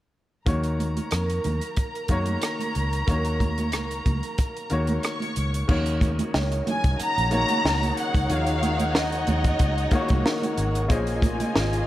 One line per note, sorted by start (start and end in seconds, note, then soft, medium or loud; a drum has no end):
0.46 0.98 D#2 medium
0.46 1.68 D#3 medium
0.46 1.69 A#3 medium
0.46 1.69 F#4 medium
0.46 5.00 A#4 medium
0.46 1.70 C#5 medium
0.46 4.99 A#5 medium
0.46 kick medium
0.46 closed hi-hat medium
0.46 muted conga soft
0.46 low conga medium
0.63 closed hi-hat medium
0.80 closed hi-hat medium
0.80 high conga medium
0.97 closed hi-hat soft
0.97 high conga medium
1.11 1.38 F2 medium
1.11 2.74 A#4 medium
1.11 cross-stick loud
1.11 closed hi-hat medium
1.11 muted conga soft
1.30 closed hi-hat medium
1.44 1.59 D#2 medium
1.44 closed hi-hat medium
1.44 muted conga soft
1.44 high conga medium
1.44 low conga medium
1.61 closed hi-hat medium
1.77 kick medium
1.77 closed hi-hat medium
1.95 closed hi-hat soft
2.08 2.35 F#2 medium
2.08 3.01 D#3 medium
2.08 3.02 A#3 medium
2.08 3.02 F#4 medium
2.08 3.02 C#5 medium
2.08 kick medium
2.08 closed hi-hat medium
2.08 muted conga soft
2.26 closed hi-hat medium
2.26 high conga medium
2.42 cross-stick loud
2.42 closed hi-hat medium
2.60 closed hi-hat soft
2.60 high conga medium
2.75 3.02 C#2 medium
2.75 closed hi-hat medium
2.75 muted conga soft
2.93 closed hi-hat medium
3.07 3.74 D#2 loud
3.07 4.29 D#3 medium
3.07 4.30 A#3 medium
3.07 4.30 F#4 medium
3.07 4.31 C#5 medium
3.07 kick loud
3.07 closed hi-hat medium
3.07 muted conga soft
3.07 low conga medium
3.25 closed hi-hat medium
3.40 kick medium
3.40 closed hi-hat medium
3.40 muted conga soft
3.40 high conga medium
3.58 closed hi-hat medium
3.58 high conga medium
3.72 4.00 C#2 medium
3.72 cross-stick loud
3.72 closed hi-hat medium
3.72 muted conga soft
3.91 closed hi-hat medium
4.06 4.20 C#2 medium
4.06 kick medium
4.06 closed hi-hat medium
4.06 muted conga soft
4.06 high conga medium
4.06 low conga medium
4.23 closed hi-hat soft
4.38 kick medium
4.38 closed hi-hat medium
4.57 closed hi-hat soft
4.70 4.97 D#2 medium
4.70 5.62 D#3 medium
4.70 5.63 A#3 medium
4.70 5.63 F#4 medium
4.70 5.63 C#5 medium
4.70 closed hi-hat medium
4.70 muted conga soft
4.87 closed hi-hat medium
4.87 high conga medium
5.03 5.68 C#5 medium
5.03 5.68 C#6 medium
5.03 cross-stick loud
5.03 closed hi-hat medium
5.20 closed hi-hat medium
5.20 high conga medium
5.36 5.62 C#2 medium
5.36 closed hi-hat medium
5.36 muted conga soft
5.54 closed hi-hat medium
5.68 6.21 D#2 loud
5.68 11.87 C#3 medium
5.68 6.90 D#3 medium
5.68 10.86 F#3 medium
5.68 6.91 A#3 medium
5.68 8.27 A#3 medium
5.68 11.87 D#4 medium
5.68 6.91 F#4 medium
5.68 6.92 C#5 loud
5.68 kick loud
5.68 crash medium
5.68 low conga medium
5.86 closed hi-hat medium
6.01 kick medium
6.01 closed hi-hat medium
6.01 muted conga soft
6.01 high conga medium
6.19 closed hi-hat medium
6.19 high conga medium
6.34 6.60 C#2 medium
6.34 7.96 C#5 medium
6.34 snare loud
6.34 muted conga soft
6.52 closed hi-hat medium
6.67 6.98 G#5 loud
6.67 closed hi-hat medium
6.67 muted conga soft
6.67 high conga medium
6.67 low conga medium
6.84 6.96 C2 medium
6.84 kick loud
6.84 closed hi-hat medium
6.98 10.86 D#4 medium
6.98 10.86 C#5 medium
6.98 10.86 F#5 loud
6.98 7.32 A#5 loud
6.98 closed hi-hat medium
6.98 muted conga soft
7.18 7.43 A#1 medium
7.18 closed hi-hat medium
7.31 8.23 D#3 medium
7.31 8.23 A#3 medium
7.31 8.24 F#4 medium
7.31 8.24 C#5 medium
7.31 7.94 A#5 loud
7.31 closed hi-hat medium
7.31 high conga soft
7.48 closed hi-hat medium
7.48 high conga medium
7.65 7.90 C#2 medium
7.65 snare loud
7.82 closed hi-hat medium
7.82 high conga medium
7.97 8.31 F#5 loud
7.97 closed hi-hat medium
8.15 8.26 C#2 medium
8.15 kick medium
8.15 closed hi-hat medium
8.29 9.24 D#2 loud
8.29 9.51 D#3 medium
8.29 11.87 G#3 medium
8.29 9.51 A#3 medium
8.29 8.37 F4 medium
8.29 9.52 C#5 medium
8.29 8.96 F5 loud
8.29 closed hi-hat medium
8.29 low conga medium
8.37 9.55 F#4 medium
8.47 closed hi-hat medium
8.62 closed hi-hat medium
8.62 high conga medium
8.79 closed hi-hat medium
8.79 high conga medium
8.95 10.58 D#5 medium
8.95 snare loud
8.95 muted conga soft
9.12 closed hi-hat medium
9.27 9.53 D#2 medium
9.27 closed hi-hat medium
9.27 muted conga soft
9.27 high conga medium
9.27 low conga medium
9.44 kick loud
9.44 closed hi-hat medium
9.59 9.86 C#2 loud
9.59 kick loud
9.59 closed hi-hat medium
9.59 muted conga soft
9.78 closed hi-hat medium
9.91 10.83 D#3 medium
9.91 10.84 A#3 medium
9.91 10.00 F4 medium
9.91 10.85 C#5 loud
9.91 kick medium
9.91 closed hi-hat medium
9.91 high conga soft
10.00 10.88 F#4 medium
10.08 10.22 C2 medium
10.08 kick medium
10.08 closed hi-hat medium
10.08 high conga medium
10.25 11.19 A#4 medium
10.25 snare loud
10.42 closed hi-hat medium
10.42 high conga medium
10.58 10.90 G#1 medium
10.58 closed hi-hat medium
10.58 muted conga soft
10.75 closed hi-hat medium
10.89 11.42 A#1 loud
10.89 11.87 A#3 medium
10.89 11.87 F4 medium
10.89 11.87 G#4 medium
10.89 11.87 C5 medium
10.89 11.87 C#5 medium
10.89 11.87 D#5 medium
10.89 11.87 D#5 loud
10.89 11.87 G#5 loud
10.89 kick loud
10.89 closed hi-hat medium
10.89 muted conga soft
10.89 low conga medium
11.07 closed hi-hat medium
11.22 kick loud
11.22 closed hi-hat medium
11.22 muted conga soft
11.22 high conga medium
11.40 closed hi-hat medium
11.40 high conga medium
11.56 11.81 G#1 medium
11.56 snare loud
11.73 closed hi-hat medium